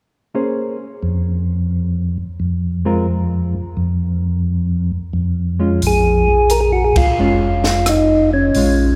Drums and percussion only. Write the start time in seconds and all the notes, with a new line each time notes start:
5.82 open hi-hat
6.50 closed hi-hat
6.96 kick, ride
7.64 snare
7.86 cross-stick, closed hi-hat
8.55 open hi-hat